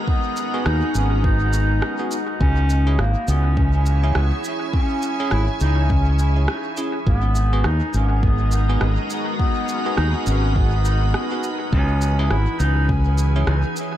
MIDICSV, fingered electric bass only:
0, 0, Header, 1, 2, 480
1, 0, Start_track
1, 0, Key_signature, 5, "minor"
1, 0, Tempo, 582524
1, 63, Time_signature, 4, 2, 24, 8
1, 11511, End_track
2, 0, Start_track
2, 0, Title_t, "Fingered electric bass"
2, 0, Program_c, 0, 33
2, 544, Note_on_c, 0, 39, 89
2, 668, Note_off_c, 0, 39, 0
2, 783, Note_on_c, 0, 32, 84
2, 1484, Note_off_c, 0, 32, 0
2, 1983, Note_on_c, 0, 37, 93
2, 2444, Note_off_c, 0, 37, 0
2, 2462, Note_on_c, 0, 32, 85
2, 2587, Note_off_c, 0, 32, 0
2, 2703, Note_on_c, 0, 37, 93
2, 3404, Note_off_c, 0, 37, 0
2, 3423, Note_on_c, 0, 37, 86
2, 3548, Note_off_c, 0, 37, 0
2, 4382, Note_on_c, 0, 32, 90
2, 4507, Note_off_c, 0, 32, 0
2, 4623, Note_on_c, 0, 37, 88
2, 5324, Note_off_c, 0, 37, 0
2, 5823, Note_on_c, 0, 32, 97
2, 6284, Note_off_c, 0, 32, 0
2, 6303, Note_on_c, 0, 39, 90
2, 6428, Note_off_c, 0, 39, 0
2, 6543, Note_on_c, 0, 32, 87
2, 7244, Note_off_c, 0, 32, 0
2, 7261, Note_on_c, 0, 32, 85
2, 7387, Note_off_c, 0, 32, 0
2, 8222, Note_on_c, 0, 39, 86
2, 8347, Note_off_c, 0, 39, 0
2, 8461, Note_on_c, 0, 32, 89
2, 9163, Note_off_c, 0, 32, 0
2, 9663, Note_on_c, 0, 37, 95
2, 10124, Note_off_c, 0, 37, 0
2, 10142, Note_on_c, 0, 32, 91
2, 10267, Note_off_c, 0, 32, 0
2, 10381, Note_on_c, 0, 37, 88
2, 11083, Note_off_c, 0, 37, 0
2, 11101, Note_on_c, 0, 37, 88
2, 11227, Note_off_c, 0, 37, 0
2, 11511, End_track
0, 0, End_of_file